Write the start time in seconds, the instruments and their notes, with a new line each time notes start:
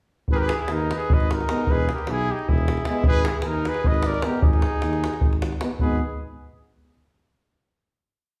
0.28 tuba G#1, davul low
0.32 trumpet G4 G#4 A#4 B4
0.40 trumpet B4
0.45 trumpet G#4
0.49 trumpet G#4, davul high
0.55 trumpet E4
0.59 davul high
0.68 tuba D#2, trumpet A#4, davul high
0.73 trumpet D#4
0.91 trumpet B4, davul high
0.96 trumpet G#4, davul high
1.09 tuba G#1, davul low
1.13 trumpet B4 D#5
1.20 davul high
1.31 trumpet A#4, davul high
1.35 trumpet D#4
1.41 davul high
1.49 euphonium G#3, french horn B3, davul high
1.66 tuba E1, davul low
1.70 trumpet G#4 B4
1.89 trumpet A#4, davul high
1.94 trumpet G4
1.98 davul high
2.07 tuba B1, trumpet E4 G#4, davul high
2.31 trumpet D#4 G4
2.39 davul high
2.46 tuba E1, trumpet E4, davul low
2.51 trumpet G#4
2.58 davul high
2.68 davul high
2.77 davul high
2.85 euphonium G#3, french horn B3, davul high
3.04 tuba G#1, davul low
3.08 trumpet G#4 B4
3.25 trumpet E4 G#4, davul high
3.34 davul high
3.42 tuba D#2, trumpet A#4, davul high
3.50 trumpet D#4
3.65 trumpet G#4 B4, davul high
3.74 davul high
3.84 tuba G#1, trumpet D#5, davul low
3.88 trumpet B4
3.94 davul high
4.03 trumpet D5, davul high
4.07 trumpet A#4
4.14 davul high
4.22 euphonium G#3, french horn B3, trumpet G4 A#4, davul high
4.42 tuba G#1, trumpet D#4 G#4, davul low
4.53 davul high
4.62 davul high
4.82 tuba D#2, davul high
4.93 davul high
5.04 davul high
5.14 davul high
5.21 tuba G#1, davul low
5.33 davul high
5.42 davul high
5.52 davul high
5.61 euphonium G#3, french horn B3, davul high
5.71 davul high
5.79 tuba G#1, euphonium G#3, french horn B3, trumpet G#4 B4, davul low